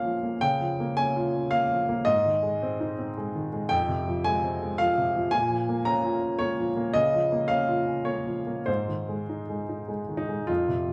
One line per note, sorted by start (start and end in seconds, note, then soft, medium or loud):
0.00 0.37 A#2 soft
0.00 0.05 F3 soft
0.00 0.23 A#3 soft
0.00 0.45 C#4 soft
0.00 0.44 F4 soft
0.00 0.44 C#5 medium
0.00 0.41 F5 medium
0.05 0.34 F3 soft
0.23 0.42 A#3 soft
0.41 2.03 C#3 medium
0.41 0.97 G5 loud
0.61 0.90 F3 soft
0.80 1.09 A#3 soft
0.97 1.27 C#4 medium
0.97 1.52 G#5 loud
1.16 1.45 F4 soft
1.35 1.64 C#4 soft
1.51 1.81 A#3 soft
1.51 2.06 F5 medium
1.71 2.00 F3 soft
1.89 2.07 A#3 soft
2.05 3.68 G#2 medium
2.05 3.16 D#5 medium
2.25 2.54 D#3 soft
2.43 2.73 G#3 soft
2.62 2.92 C4 medium
2.80 3.10 D#4 medium
2.98 3.28 C4 soft
3.17 3.47 G#3 soft
3.35 3.64 D#3 soft
3.53 3.71 G#3 soft
3.69 5.29 F2 medium
3.69 4.25 G5 loud
3.88 4.18 C3 medium
4.07 4.37 F3 soft
4.24 4.55 G#3 medium
4.24 4.79 G#5 loud
4.44 4.73 C4 soft
4.62 4.91 G#3 soft
4.78 5.08 F3 soft
4.78 5.32 F5 loud
4.98 5.26 C3 soft
5.16 5.33 F3 soft
5.31 6.91 A#2 medium
5.31 5.85 G#5 loud
5.50 5.79 F3 soft
5.69 5.97 A#3 soft
5.85 6.15 C#4 medium
5.85 6.40 A#5 loud
6.04 6.34 F4 soft
6.22 6.52 C#4 soft
6.39 6.70 A#3 soft
6.39 6.94 C#5 medium
6.59 6.88 F3 soft
6.76 6.95 A#3 medium
6.93 8.63 C#3 medium
6.93 7.49 D#5 loud
7.14 7.43 F3 soft
7.32 7.61 A#3 soft
7.48 7.79 C#4 medium
7.48 8.06 F5 medium
7.68 7.99 F4 soft
7.87 8.19 C#4 soft
8.05 8.39 A#3 soft
8.05 8.67 C#5 medium
8.26 8.59 F3 soft
8.47 8.68 A#3 soft
8.66 10.45 G#2 medium
8.66 9.88 C5 medium
8.88 9.21 D#3 soft
9.09 9.41 G#3 soft
9.29 9.61 D#4 soft
9.49 9.81 G#3 soft
9.69 10.01 D#4 soft
9.88 10.21 G#3 soft
10.09 10.41 D#3 soft
10.17 10.48 D#4 medium
10.29 10.49 G#3 soft
10.47 10.93 F2 medium
10.47 10.93 F4 medium
10.68 10.93 C3 soft
10.88 10.93 F3 soft